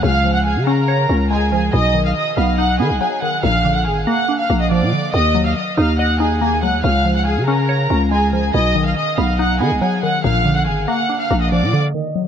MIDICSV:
0, 0, Header, 1, 4, 480
1, 0, Start_track
1, 0, Tempo, 425532
1, 34, Time_signature, 4, 2, 24, 8
1, 13850, End_track
2, 0, Start_track
2, 0, Title_t, "Violin section"
2, 0, Program_c, 0, 48
2, 33, Note_on_c, 0, 77, 114
2, 41, Note_on_c, 0, 89, 85
2, 372, Note_off_c, 0, 77, 0
2, 376, Note_off_c, 0, 89, 0
2, 390, Note_on_c, 0, 78, 82
2, 399, Note_on_c, 0, 90, 65
2, 501, Note_off_c, 0, 78, 0
2, 506, Note_off_c, 0, 90, 0
2, 513, Note_on_c, 0, 80, 87
2, 522, Note_on_c, 0, 68, 72
2, 731, Note_off_c, 0, 80, 0
2, 736, Note_off_c, 0, 68, 0
2, 748, Note_on_c, 0, 82, 82
2, 757, Note_on_c, 0, 70, 65
2, 1427, Note_off_c, 0, 82, 0
2, 1432, Note_off_c, 0, 70, 0
2, 1477, Note_on_c, 0, 80, 90
2, 1486, Note_on_c, 0, 68, 74
2, 1694, Note_off_c, 0, 80, 0
2, 1699, Note_off_c, 0, 68, 0
2, 1714, Note_on_c, 0, 80, 83
2, 1723, Note_on_c, 0, 68, 72
2, 1932, Note_off_c, 0, 80, 0
2, 1937, Note_off_c, 0, 68, 0
2, 1961, Note_on_c, 0, 75, 119
2, 1970, Note_on_c, 0, 87, 83
2, 2296, Note_off_c, 0, 75, 0
2, 2301, Note_off_c, 0, 87, 0
2, 2315, Note_on_c, 0, 77, 77
2, 2324, Note_on_c, 0, 89, 60
2, 2424, Note_off_c, 0, 77, 0
2, 2428, Note_off_c, 0, 89, 0
2, 2431, Note_on_c, 0, 75, 95
2, 2440, Note_on_c, 0, 87, 72
2, 2651, Note_off_c, 0, 75, 0
2, 2656, Note_off_c, 0, 87, 0
2, 2676, Note_on_c, 0, 77, 85
2, 2685, Note_on_c, 0, 89, 61
2, 2893, Note_off_c, 0, 77, 0
2, 2898, Note_off_c, 0, 89, 0
2, 2917, Note_on_c, 0, 78, 97
2, 2926, Note_on_c, 0, 90, 80
2, 3134, Note_off_c, 0, 78, 0
2, 3139, Note_off_c, 0, 90, 0
2, 3152, Note_on_c, 0, 80, 90
2, 3161, Note_on_c, 0, 68, 70
2, 3371, Note_off_c, 0, 80, 0
2, 3376, Note_off_c, 0, 68, 0
2, 3392, Note_on_c, 0, 80, 84
2, 3401, Note_on_c, 0, 68, 64
2, 3611, Note_off_c, 0, 80, 0
2, 3616, Note_off_c, 0, 68, 0
2, 3638, Note_on_c, 0, 78, 85
2, 3647, Note_on_c, 0, 90, 67
2, 3854, Note_off_c, 0, 78, 0
2, 3859, Note_off_c, 0, 90, 0
2, 3875, Note_on_c, 0, 77, 115
2, 3884, Note_on_c, 0, 89, 88
2, 4213, Note_off_c, 0, 77, 0
2, 4218, Note_off_c, 0, 89, 0
2, 4233, Note_on_c, 0, 78, 82
2, 4243, Note_on_c, 0, 90, 66
2, 4343, Note_off_c, 0, 78, 0
2, 4348, Note_off_c, 0, 90, 0
2, 4354, Note_on_c, 0, 80, 70
2, 4363, Note_on_c, 0, 68, 66
2, 4572, Note_off_c, 0, 80, 0
2, 4577, Note_off_c, 0, 68, 0
2, 4594, Note_on_c, 0, 78, 97
2, 4603, Note_on_c, 0, 90, 64
2, 4932, Note_off_c, 0, 78, 0
2, 4937, Note_off_c, 0, 90, 0
2, 4952, Note_on_c, 0, 77, 80
2, 4961, Note_on_c, 0, 89, 64
2, 5171, Note_off_c, 0, 77, 0
2, 5176, Note_off_c, 0, 89, 0
2, 5191, Note_on_c, 0, 75, 84
2, 5200, Note_on_c, 0, 87, 60
2, 5302, Note_off_c, 0, 75, 0
2, 5306, Note_off_c, 0, 87, 0
2, 5314, Note_on_c, 0, 74, 85
2, 5322, Note_on_c, 0, 86, 71
2, 5765, Note_off_c, 0, 74, 0
2, 5770, Note_off_c, 0, 86, 0
2, 5791, Note_on_c, 0, 75, 114
2, 5800, Note_on_c, 0, 87, 87
2, 6131, Note_off_c, 0, 75, 0
2, 6136, Note_off_c, 0, 87, 0
2, 6151, Note_on_c, 0, 77, 88
2, 6160, Note_on_c, 0, 89, 66
2, 6261, Note_off_c, 0, 77, 0
2, 6266, Note_off_c, 0, 89, 0
2, 6275, Note_on_c, 0, 75, 77
2, 6284, Note_on_c, 0, 87, 55
2, 6493, Note_off_c, 0, 75, 0
2, 6497, Note_off_c, 0, 87, 0
2, 6510, Note_on_c, 0, 77, 85
2, 6518, Note_on_c, 0, 89, 71
2, 6730, Note_off_c, 0, 77, 0
2, 6735, Note_off_c, 0, 89, 0
2, 6753, Note_on_c, 0, 78, 90
2, 6762, Note_on_c, 0, 90, 72
2, 6972, Note_off_c, 0, 78, 0
2, 6977, Note_off_c, 0, 90, 0
2, 6993, Note_on_c, 0, 80, 81
2, 7003, Note_on_c, 0, 68, 64
2, 7212, Note_off_c, 0, 80, 0
2, 7217, Note_off_c, 0, 68, 0
2, 7234, Note_on_c, 0, 80, 91
2, 7243, Note_on_c, 0, 68, 64
2, 7452, Note_off_c, 0, 80, 0
2, 7457, Note_off_c, 0, 68, 0
2, 7474, Note_on_c, 0, 78, 81
2, 7483, Note_on_c, 0, 90, 63
2, 7692, Note_off_c, 0, 78, 0
2, 7697, Note_off_c, 0, 90, 0
2, 7713, Note_on_c, 0, 77, 114
2, 7722, Note_on_c, 0, 89, 86
2, 8052, Note_off_c, 0, 77, 0
2, 8057, Note_off_c, 0, 89, 0
2, 8072, Note_on_c, 0, 78, 85
2, 8080, Note_on_c, 0, 90, 66
2, 8182, Note_off_c, 0, 78, 0
2, 8186, Note_off_c, 0, 90, 0
2, 8193, Note_on_c, 0, 80, 85
2, 8202, Note_on_c, 0, 68, 73
2, 8411, Note_off_c, 0, 80, 0
2, 8417, Note_off_c, 0, 68, 0
2, 8428, Note_on_c, 0, 82, 85
2, 8437, Note_on_c, 0, 70, 68
2, 9108, Note_off_c, 0, 82, 0
2, 9113, Note_off_c, 0, 70, 0
2, 9158, Note_on_c, 0, 80, 89
2, 9167, Note_on_c, 0, 68, 72
2, 9374, Note_off_c, 0, 80, 0
2, 9379, Note_off_c, 0, 68, 0
2, 9395, Note_on_c, 0, 80, 83
2, 9404, Note_on_c, 0, 68, 71
2, 9612, Note_off_c, 0, 80, 0
2, 9618, Note_off_c, 0, 68, 0
2, 9641, Note_on_c, 0, 75, 116
2, 9649, Note_on_c, 0, 87, 84
2, 9976, Note_off_c, 0, 75, 0
2, 9980, Note_off_c, 0, 87, 0
2, 9995, Note_on_c, 0, 77, 79
2, 10004, Note_on_c, 0, 89, 58
2, 10104, Note_off_c, 0, 77, 0
2, 10109, Note_off_c, 0, 89, 0
2, 10113, Note_on_c, 0, 75, 94
2, 10122, Note_on_c, 0, 87, 73
2, 10332, Note_off_c, 0, 75, 0
2, 10337, Note_off_c, 0, 87, 0
2, 10358, Note_on_c, 0, 77, 86
2, 10366, Note_on_c, 0, 89, 60
2, 10574, Note_off_c, 0, 77, 0
2, 10579, Note_off_c, 0, 89, 0
2, 10598, Note_on_c, 0, 78, 97
2, 10607, Note_on_c, 0, 90, 76
2, 10814, Note_off_c, 0, 78, 0
2, 10819, Note_off_c, 0, 90, 0
2, 10833, Note_on_c, 0, 80, 88
2, 10842, Note_on_c, 0, 68, 72
2, 11052, Note_off_c, 0, 80, 0
2, 11057, Note_off_c, 0, 68, 0
2, 11072, Note_on_c, 0, 80, 85
2, 11081, Note_on_c, 0, 68, 68
2, 11291, Note_off_c, 0, 80, 0
2, 11296, Note_off_c, 0, 68, 0
2, 11318, Note_on_c, 0, 78, 84
2, 11327, Note_on_c, 0, 90, 65
2, 11535, Note_off_c, 0, 78, 0
2, 11539, Note_off_c, 0, 90, 0
2, 11555, Note_on_c, 0, 77, 112
2, 11563, Note_on_c, 0, 89, 88
2, 11893, Note_off_c, 0, 77, 0
2, 11897, Note_off_c, 0, 89, 0
2, 11915, Note_on_c, 0, 78, 81
2, 11923, Note_on_c, 0, 90, 64
2, 12024, Note_off_c, 0, 78, 0
2, 12028, Note_off_c, 0, 90, 0
2, 12035, Note_on_c, 0, 80, 70
2, 12044, Note_on_c, 0, 68, 65
2, 12253, Note_off_c, 0, 80, 0
2, 12257, Note_off_c, 0, 68, 0
2, 12274, Note_on_c, 0, 78, 96
2, 12283, Note_on_c, 0, 90, 65
2, 12612, Note_off_c, 0, 78, 0
2, 12617, Note_off_c, 0, 90, 0
2, 12632, Note_on_c, 0, 77, 80
2, 12641, Note_on_c, 0, 89, 63
2, 12851, Note_off_c, 0, 77, 0
2, 12856, Note_off_c, 0, 89, 0
2, 12872, Note_on_c, 0, 75, 80
2, 12881, Note_on_c, 0, 87, 59
2, 12982, Note_off_c, 0, 75, 0
2, 12987, Note_off_c, 0, 87, 0
2, 12996, Note_on_c, 0, 74, 87
2, 13004, Note_on_c, 0, 86, 70
2, 13446, Note_off_c, 0, 74, 0
2, 13450, Note_off_c, 0, 86, 0
2, 13474, Note_on_c, 0, 75, 107
2, 13483, Note_on_c, 0, 87, 82
2, 13812, Note_off_c, 0, 75, 0
2, 13817, Note_off_c, 0, 87, 0
2, 13850, End_track
3, 0, Start_track
3, 0, Title_t, "Synth pluck"
3, 0, Program_c, 1, 84
3, 33, Note_on_c, 1, 49, 86
3, 272, Note_on_c, 1, 53, 82
3, 756, Note_on_c, 1, 61, 91
3, 994, Note_on_c, 1, 73, 93
3, 1220, Note_off_c, 1, 61, 0
3, 1234, Note_off_c, 1, 49, 0
3, 1234, Note_on_c, 1, 61, 81
3, 1473, Note_off_c, 1, 53, 0
3, 1474, Note_on_c, 1, 56, 94
3, 1718, Note_on_c, 1, 53, 76
3, 1954, Note_off_c, 1, 56, 0
3, 1954, Note_off_c, 1, 61, 0
3, 1954, Note_off_c, 1, 73, 0
3, 1956, Note_off_c, 1, 53, 0
3, 1959, Note_on_c, 1, 47, 95
3, 2195, Note_on_c, 1, 51, 81
3, 2674, Note_on_c, 1, 59, 96
3, 2914, Note_on_c, 1, 63, 84
3, 3141, Note_off_c, 1, 59, 0
3, 3155, Note_on_c, 1, 59, 89
3, 3157, Note_off_c, 1, 47, 0
3, 3392, Note_on_c, 1, 54, 97
3, 3394, Note_off_c, 1, 51, 0
3, 3636, Note_on_c, 1, 51, 73
3, 3873, Note_off_c, 1, 54, 0
3, 3874, Note_off_c, 1, 59, 0
3, 3874, Note_off_c, 1, 63, 0
3, 3875, Note_off_c, 1, 51, 0
3, 3876, Note_on_c, 1, 46, 98
3, 4115, Note_on_c, 1, 50, 79
3, 4591, Note_on_c, 1, 58, 102
3, 4833, Note_on_c, 1, 62, 79
3, 5059, Note_off_c, 1, 58, 0
3, 5073, Note_on_c, 1, 58, 83
3, 5075, Note_off_c, 1, 46, 0
3, 5314, Note_off_c, 1, 50, 0
3, 5318, Note_on_c, 1, 53, 98
3, 5555, Note_on_c, 1, 50, 74
3, 5793, Note_off_c, 1, 58, 0
3, 5793, Note_on_c, 1, 51, 92
3, 5794, Note_off_c, 1, 62, 0
3, 5795, Note_off_c, 1, 50, 0
3, 5796, Note_off_c, 1, 53, 0
3, 6031, Note_on_c, 1, 54, 75
3, 6514, Note_on_c, 1, 63, 101
3, 6759, Note_on_c, 1, 75, 90
3, 6979, Note_off_c, 1, 63, 0
3, 6992, Note_on_c, 1, 63, 84
3, 6993, Note_off_c, 1, 51, 0
3, 7232, Note_off_c, 1, 54, 0
3, 7235, Note_on_c, 1, 58, 96
3, 7476, Note_on_c, 1, 54, 77
3, 7713, Note_off_c, 1, 63, 0
3, 7714, Note_off_c, 1, 58, 0
3, 7715, Note_off_c, 1, 54, 0
3, 7715, Note_on_c, 1, 49, 85
3, 7716, Note_off_c, 1, 75, 0
3, 7951, Note_on_c, 1, 53, 81
3, 8435, Note_on_c, 1, 61, 94
3, 8673, Note_on_c, 1, 73, 93
3, 8899, Note_off_c, 1, 61, 0
3, 8913, Note_on_c, 1, 61, 81
3, 8914, Note_off_c, 1, 49, 0
3, 9152, Note_on_c, 1, 56, 93
3, 9153, Note_off_c, 1, 53, 0
3, 9397, Note_on_c, 1, 53, 78
3, 9633, Note_off_c, 1, 56, 0
3, 9633, Note_off_c, 1, 61, 0
3, 9633, Note_off_c, 1, 73, 0
3, 9635, Note_off_c, 1, 53, 0
3, 9638, Note_on_c, 1, 47, 96
3, 9874, Note_on_c, 1, 51, 77
3, 10353, Note_on_c, 1, 59, 91
3, 10593, Note_on_c, 1, 63, 90
3, 10821, Note_off_c, 1, 59, 0
3, 10834, Note_on_c, 1, 59, 94
3, 10836, Note_off_c, 1, 47, 0
3, 11072, Note_on_c, 1, 54, 97
3, 11074, Note_off_c, 1, 51, 0
3, 11315, Note_on_c, 1, 51, 72
3, 11553, Note_off_c, 1, 54, 0
3, 11554, Note_off_c, 1, 59, 0
3, 11554, Note_off_c, 1, 63, 0
3, 11555, Note_off_c, 1, 51, 0
3, 11556, Note_on_c, 1, 46, 101
3, 11795, Note_on_c, 1, 50, 77
3, 12271, Note_on_c, 1, 58, 98
3, 12513, Note_on_c, 1, 62, 81
3, 12739, Note_off_c, 1, 58, 0
3, 12752, Note_on_c, 1, 58, 83
3, 12755, Note_off_c, 1, 46, 0
3, 12994, Note_off_c, 1, 50, 0
3, 12997, Note_on_c, 1, 53, 94
3, 13234, Note_on_c, 1, 50, 77
3, 13473, Note_off_c, 1, 58, 0
3, 13473, Note_on_c, 1, 51, 90
3, 13474, Note_off_c, 1, 50, 0
3, 13474, Note_off_c, 1, 62, 0
3, 13476, Note_off_c, 1, 53, 0
3, 13711, Note_on_c, 1, 54, 75
3, 13850, Note_off_c, 1, 51, 0
3, 13850, Note_off_c, 1, 54, 0
3, 13850, End_track
4, 0, Start_track
4, 0, Title_t, "808-style bass"
4, 0, Program_c, 2, 38
4, 34, Note_on_c, 2, 37, 112
4, 633, Note_on_c, 2, 49, 106
4, 650, Note_off_c, 2, 37, 0
4, 1203, Note_off_c, 2, 49, 0
4, 1233, Note_on_c, 2, 37, 104
4, 1925, Note_off_c, 2, 37, 0
4, 1953, Note_on_c, 2, 35, 120
4, 2414, Note_off_c, 2, 35, 0
4, 2674, Note_on_c, 2, 35, 112
4, 3154, Note_on_c, 2, 51, 99
4, 3171, Note_off_c, 2, 35, 0
4, 3274, Note_on_c, 2, 35, 97
4, 3290, Note_off_c, 2, 51, 0
4, 3388, Note_off_c, 2, 35, 0
4, 3873, Note_on_c, 2, 34, 112
4, 4354, Note_on_c, 2, 32, 103
4, 4371, Note_off_c, 2, 34, 0
4, 4582, Note_off_c, 2, 32, 0
4, 5073, Note_on_c, 2, 34, 105
4, 5435, Note_on_c, 2, 46, 101
4, 5452, Note_off_c, 2, 34, 0
4, 5548, Note_off_c, 2, 46, 0
4, 5794, Note_on_c, 2, 39, 114
4, 6255, Note_off_c, 2, 39, 0
4, 6515, Note_on_c, 2, 39, 110
4, 7475, Note_on_c, 2, 37, 102
4, 7492, Note_off_c, 2, 39, 0
4, 7594, Note_on_c, 2, 39, 101
4, 7611, Note_off_c, 2, 37, 0
4, 7708, Note_off_c, 2, 39, 0
4, 7715, Note_on_c, 2, 37, 116
4, 8315, Note_on_c, 2, 49, 99
4, 8332, Note_off_c, 2, 37, 0
4, 8884, Note_off_c, 2, 49, 0
4, 8914, Note_on_c, 2, 37, 103
4, 9605, Note_off_c, 2, 37, 0
4, 9635, Note_on_c, 2, 35, 117
4, 10095, Note_off_c, 2, 35, 0
4, 10354, Note_on_c, 2, 35, 114
4, 10834, Note_on_c, 2, 51, 100
4, 10851, Note_off_c, 2, 35, 0
4, 10954, Note_on_c, 2, 35, 93
4, 10971, Note_off_c, 2, 51, 0
4, 11068, Note_off_c, 2, 35, 0
4, 11553, Note_on_c, 2, 34, 112
4, 12034, Note_on_c, 2, 32, 103
4, 12051, Note_off_c, 2, 34, 0
4, 12262, Note_off_c, 2, 32, 0
4, 12754, Note_on_c, 2, 34, 111
4, 13114, Note_on_c, 2, 46, 101
4, 13131, Note_off_c, 2, 34, 0
4, 13228, Note_off_c, 2, 46, 0
4, 13850, End_track
0, 0, End_of_file